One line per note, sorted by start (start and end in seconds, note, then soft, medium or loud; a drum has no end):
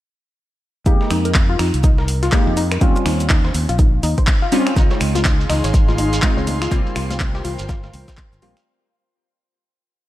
0.86 0.97 F2 loud
0.86 2.30 G#3 medium
0.86 2.30 A#3 medium
0.86 0.90 D#4 medium
0.86 2.30 D#4 medium
0.86 2.30 G4 medium
0.86 kick loud
0.86 closed hi-hat medium
0.86 shaker medium
1.01 snare medium
1.11 1.55 F2 loud
1.11 1.21 D#4 loud
1.11 finger snap medium
1.11 open hi-hat loud
1.11 shaker medium
1.25 1.32 A#4 medium
1.25 closed hi-hat medium
1.34 kick loud
1.34 snare loud
1.34 clap loud
1.34 closed hi-hat medium
1.34 shaker medium
1.50 1.54 F4 loud
1.59 1.70 F2 medium
1.59 1.63 D#4 medium
1.59 finger snap medium
1.59 open hi-hat medium
1.74 2.28 C2 medium
1.74 closed hi-hat medium
1.84 1.94 D#4 loud
1.84 kick loud
1.84 closed hi-hat medium
1.84 shaker medium
1.98 2.05 A#4 medium
1.98 snare medium
2.08 open hi-hat loud
2.08 shaker medium
2.23 2.27 F4 loud
2.23 snare soft
2.23 closed hi-hat medium
2.32 2.51 G#3 medium
2.32 2.51 A#3 medium
2.32 2.37 D#4 medium
2.32 2.51 D#4 medium
2.32 2.51 G4 loud
2.32 kick loud
2.32 snare loud
2.32 clap loud
2.32 closed hi-hat medium
2.32 shaker medium
2.47 2.77 F2 loud
2.57 2.67 D#4 loud
2.57 open hi-hat medium
2.57 shaker medium
2.71 2.78 A#4 medium
2.71 finger snap medium
2.71 snare soft
2.71 closed hi-hat medium
2.81 2.92 D#2 loud
2.81 4.49 G3 medium
2.81 4.50 C4 medium
2.81 4.50 C#4 medium
2.81 4.50 F4 loud
2.81 kick loud
2.81 closed hi-hat medium
2.81 shaker medium
2.96 3.00 F4 loud
2.96 shaker medium
3.06 3.50 D#2 medium
3.06 3.10 D#4 medium
3.06 finger snap medium
3.06 snare soft
3.06 open hi-hat loud
3.20 closed hi-hat medium
3.20 shaker medium
3.30 3.40 D#4 loud
3.30 kick loud
3.30 snare loud
3.30 clap loud
3.30 closed hi-hat medium
3.30 shaker medium
3.45 3.52 C5 medium
3.45 snare medium
3.54 3.65 D#2 medium
3.54 open hi-hat loud
3.54 shaker medium
3.69 3.99 A#1 medium
3.69 3.74 F4 loud
3.69 closed hi-hat soft
3.69 closed hi-hat medium
3.79 3.83 D#4 medium
3.79 kick loud
3.79 closed hi-hat medium
3.79 shaker medium
4.03 4.14 D#2 loud
4.03 4.14 D#4 loud
4.03 open hi-hat loud
4.03 shaker medium
4.18 4.25 C5 medium
4.18 kick medium
4.18 closed hi-hat medium
4.27 kick loud
4.27 snare loud
4.27 clap loud
4.27 closed hi-hat medium
4.27 shaker medium
4.42 4.47 F4 loud
4.42 snare soft
4.52 4.65 G3 loud
4.52 4.65 C4 medium
4.52 4.65 C#4 loud
4.52 4.56 D#4 medium
4.52 4.65 F4 loud
4.52 open hi-hat loud
4.52 shaker medium
4.67 finger snap medium
4.67 snare soft
4.67 closed hi-hat medium
4.76 4.87 C#2 loud
4.76 6.20 G#3 medium
4.76 6.20 C4 medium
4.76 4.87 D#4 loud
4.76 6.70 D#4 medium
4.76 6.20 D#4 medium
4.76 6.21 F4 medium
4.76 6.70 G#4 medium
4.76 6.70 F5 medium
4.76 8.63 C6 medium
4.76 kick loud
4.76 closed hi-hat medium
4.76 shaker medium
4.76 shekere medium
4.91 4.98 C#5 medium
4.91 snare medium
4.91 muted conga medium
4.91 shekere soft
5.01 5.45 C#2 loud
5.01 finger snap medium
5.01 open hi-hat loud
5.01 shaker medium
5.15 5.20 F4 loud
5.15 closed hi-hat soft
5.15 muted conga soft
5.15 high conga medium
5.15 shekere medium
5.25 5.29 D#4 medium
5.25 kick loud
5.25 snare loud
5.25 clap loud
5.25 closed hi-hat medium
5.25 shaker medium
5.25 shekere medium
5.41 shekere soft
5.49 5.60 C#2 medium
5.49 5.60 D#4 loud
5.49 finger snap medium
5.49 open hi-hat medium
5.49 open hi-hat loud
5.49 muted conga soft
5.49 low conga medium
5.64 6.18 G#1 medium
5.64 5.71 C#5 medium
5.64 closed hi-hat medium
5.64 shekere medium
5.74 kick loud
5.74 closed hi-hat medium
5.74 shaker medium
5.74 shekere medium
5.88 5.93 F4 loud
5.88 snare medium
5.88 high conga medium
5.88 shekere soft
5.98 6.02 D#4 medium
5.98 open hi-hat loud
5.98 shaker medium
6.13 snare soft
6.13 closed hi-hat medium
6.13 shekere loud
6.22 6.41 G#3 medium
6.22 6.41 C4 medium
6.22 6.33 D#4 loud
6.22 6.41 D#4 medium
6.22 6.41 F4 loud
6.22 kick loud
6.22 snare loud
6.22 clap loud
6.22 closed hi-hat medium
6.22 shaker medium
6.22 shekere medium
6.37 6.67 C#2 loud
6.37 6.44 C#5 medium
6.37 shekere soft
6.47 open hi-hat loud
6.47 high conga medium
6.47 low conga medium
6.47 shaker medium
6.62 6.66 F4 loud
6.62 finger snap medium
6.62 closed hi-hat medium
6.62 shekere medium
6.71 6.82 C2 loud
6.71 8.40 G3 medium
6.71 8.40 A#3 medium
6.71 8.40 C4 medium
6.71 6.76 F4 medium
6.71 8.65 F4 medium
6.71 8.40 F4 loud
6.71 8.65 A#4 medium
6.71 8.65 C5 medium
6.71 8.65 G5 medium
6.71 kick loud
6.71 closed hi-hat medium
6.71 shaker medium
6.71 shekere medium
6.86 muted conga soft
6.86 shekere soft
6.96 7.40 C2 loud
6.96 7.06 F4 loud
6.96 finger snap medium
6.96 open hi-hat loud
6.96 shaker medium
7.10 7.17 F5 medium
7.10 closed hi-hat soft
7.10 muted conga soft
7.10 high conga loud
7.10 shekere medium
7.20 kick loud
7.20 snare loud
7.20 clap loud
7.20 closed hi-hat medium
7.20 shekere medium
7.20 shaker medium
7.35 7.39 G4 loud
7.35 snare medium
7.35 shekere soft
7.45 7.55 C2 medium
7.45 7.49 F4 medium
7.45 open hi-hat loud
7.45 low conga medium
7.45 shaker medium
7.59 7.89 G1 medium
7.59 closed hi-hat soft
7.59 closed hi-hat medium
7.59 shekere medium
7.69 7.79 F4 loud
7.69 kick loud
7.69 snare loud
7.69 closed hi-hat medium
7.69 shekere medium
7.69 shaker medium
7.83 7.91 F5 medium
7.83 snare medium
7.83 high conga medium
7.83 shekere soft
7.93 8.04 C2 loud
7.93 open hi-hat loud
7.93 low conga loud
7.93 shaker medium
8.08 8.13 C5 medium
8.08 kick medium
8.08 snare loud
8.08 closed hi-hat medium
8.08 shaker medium
8.08 shekere medium
8.17 8.25 C5 medium
8.17 kick loud
8.17 snare medium
8.17 clap loud
8.17 closed hi-hat medium
8.17 shekere medium
8.32 8.40 G1 loud
8.32 shaker medium
8.32 shekere soft
8.42 8.53 A#1 medium
8.42 8.55 G3 loud
8.42 8.55 A#3 medium
8.42 8.55 C4 medium
8.42 8.55 F4 loud
8.42 8.46 G4 medium
8.42 open hi-hat loud
8.42 high conga medium
8.42 low conga medium
8.42 shaker medium
8.57 8.62 F5 medium
8.57 finger snap medium
8.57 snare soft
8.57 closed hi-hat medium
8.57 shekere medium